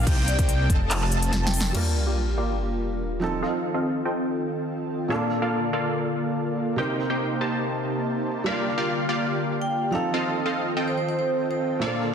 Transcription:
0.07 C2 A#3 D#4 G4 C5 G5, kick, closed hi-hat, crash
0.28 D5, closed hi-hat
0.39 C2 A#3 D#4 G4 C5 G5, kick, closed hi-hat
0.49 closed hi-hat
0.70 F1 C4 F4 A4 D#5 A5, kick, closed hi-hat
0.91 clap, closed hi-hat, crash
1.02 clap
1.12 closed hi-hat
1.22 closed hi-hat
1.33 snare, closed hi-hat
1.43 G5, snare
1.54 open hi-hat
1.61 snare
1.73 G3 A#3 D4 F4 G4 A#4 D5 F5, crash, sub drop
1.77 A#4
2.06 A#3 F4 G4 D5 F5
2.38 A#3 F4 G4 D5 F5
3.20 D#3 F3 C4 D#4 A4
3.42 C4 F4 A4 D#5 F5
3.74 C4 F4 A4 D#5 F5
4.05 C4 F4 A4 D#5 G5
5.08 A#2 D3 A#3 D4 F4 A4 D5 F5
5.12 A4
5.42 A#3 F4 A4 D5 F5
5.73 A#3 F4 A4 D5 F5
6.76 C3 A#3 C4 D#4 G4 C5 G5
6.80 A#4
7.10 A#3 D#4 G4 C5 G5
7.41 A#3 D#4 G4 C5 A5
8.44 D3 G3 A#3 D4 F4 G4 D5 F5
8.48 A#4
8.78 A#3 F4 G4 D5 F5
9.09 A#3 F4 G4 D5 F5
9.62 G5
9.91 D#3 F3 C4 D#4 A4 F5
9.95 A4
10.14 C4 F4 A4 D#5 F5
10.46 C4 F4 A4 D#5 F5
10.77 C4 F4 A4 D#5 G5
10.88 C5
10.98 C5
11.09 C5
11.19 C5
11.51 C5
11.80 A#2 D3 A#3 D4 F4 A4 D5 F5, riser
11.84 A4

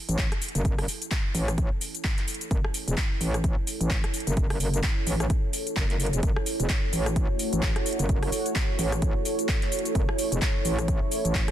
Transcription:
Already playing: E4 A4
0.09 A1, closed hi-hat, shaker
0.18 kick, clap
0.32 cross-stick, closed hi-hat
0.40 C#5, open hi-hat, shaker
0.48 closed hi-hat
0.55 F#1, closed hi-hat, shaker
0.65 kick, closed hi-hat, shaker
0.78 cross-stick, open hi-hat
0.88 open hi-hat, shaker
1.02 closed hi-hat, shaker
1.11 kick, clap, closed hi-hat, shaker
1.35 A1, open hi-hat, shaker
1.48 cross-stick, closed hi-hat, shaker
1.58 kick, closed hi-hat, shaker
1.81 open hi-hat, shaker
1.95 closed hi-hat, shaker
2.04 kick, clap, shaker
2.18 clap, closed hi-hat
2.28 open hi-hat, shaker
2.34 closed hi-hat
2.41 closed hi-hat, shaker
2.51 F#1, kick, closed hi-hat, shaker
2.64 cross-stick
2.74 open hi-hat, shaker
2.88 E1, closed hi-hat, shaker
2.97 kick, clap, closed hi-hat, shaker
3.21 A1, open hi-hat, shaker
3.34 cross-stick, closed hi-hat, shaker
3.44 kick, closed hi-hat, shaker
3.67 open hi-hat, shaker
3.81 A1, closed hi-hat, shaker
3.90 kick, clap, shaker
4.04 cross-stick, closed hi-hat
4.14 open hi-hat, shaker
4.20 closed hi-hat
4.27 F#1, closed hi-hat, shaker
4.37 kick, closed hi-hat, shaker
4.50 cross-stick, open hi-hat
4.60 F#1, open hi-hat, shaker
4.74 closed hi-hat, shaker
4.83 kick, clap, closed hi-hat, shaker
5.07 A1, open hi-hat, shaker
5.20 cross-stick, closed hi-hat, shaker
5.30 kick, closed hi-hat, shaker
5.53 open hi-hat, shaker
5.67 closed hi-hat, shaker
5.76 F#1, kick, clap, shaker
5.90 clap, closed hi-hat
6.00 open hi-hat, shaker
6.06 closed hi-hat
6.13 E1, closed hi-hat, shaker
6.23 F#1 A3 F#4 C#5, kick, closed hi-hat, shaker
6.36 cross-stick
6.46 open hi-hat, shaker
6.60 E1, closed hi-hat, shaker
6.69 kick, clap, closed hi-hat, shaker
6.93 A1, open hi-hat, shaker
7.06 cross-stick, closed hi-hat, shaker
7.16 kick, closed hi-hat, shaker
7.39 open hi-hat, shaker
7.53 A1, closed hi-hat, shaker
7.63 kick, clap, shaker
7.76 cross-stick, closed hi-hat
7.86 open hi-hat, shaker
7.93 closed hi-hat
7.99 F#1, closed hi-hat, shaker
8.09 kick, closed hi-hat, shaker
8.23 cross-stick, open hi-hat
8.32 open hi-hat, shaker
8.46 closed hi-hat, shaker
8.56 kick, clap, closed hi-hat, shaker
8.79 A1, open hi-hat, shaker
8.92 cross-stick, closed hi-hat, shaker
9.02 kick, closed hi-hat, shaker
9.25 open hi-hat, shaker
9.39 closed hi-hat, shaker
9.49 kick, clap, shaker
9.62 clap, closed hi-hat
9.72 open hi-hat, shaker
9.79 closed hi-hat
9.85 closed hi-hat, shaker
9.95 F#1 E4, kick, closed hi-hat, shaker
10.09 cross-stick
10.19 open hi-hat, shaker
10.32 E1, closed hi-hat, shaker
10.42 kick, clap, closed hi-hat, shaker
10.65 A1, open hi-hat, shaker
10.79 cross-stick, closed hi-hat, shaker
10.88 kick, closed hi-hat, shaker
11.12 open hi-hat, shaker
11.25 A1, closed hi-hat, shaker
11.35 kick, clap, shaker
11.48 cross-stick, closed hi-hat

